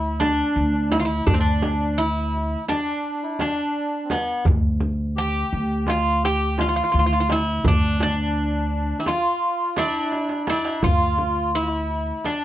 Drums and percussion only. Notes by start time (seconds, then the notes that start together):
0.21 darbuka tek, frame drum
0.92 darbuka tek, frame drum
1.27 frame drum, darbuka dum
1.62 darbuka tek, frame drum
1.98 darbuka ka
2.34 darbuka ka
2.68 darbuka tek, frame drum
3.39 darbuka tek, frame drum
4.10 darbuka tek, frame drum
4.45 frame drum, darbuka dum
4.80 frame drum
5.17 darbuka ka
5.53 darbuka ka
5.87 darbuka tek, frame drum
6.58 darbuka tek, frame drum
7.29 darbuka tek, frame drum
7.65 frame drum, darbuka dum
8.00 darbuka tek, frame drum
9.06 darbuka tek, frame drum
9.76 darbuka tek, frame drum
10.12 darbuka tek
10.29 darbuka ka
10.47 darbuka tek, frame drum
10.65 darbuka ka
10.83 darbuka dum, frame drum
11.18 frame drum
11.89 darbuka ka
12.25 darbuka tek, frame drum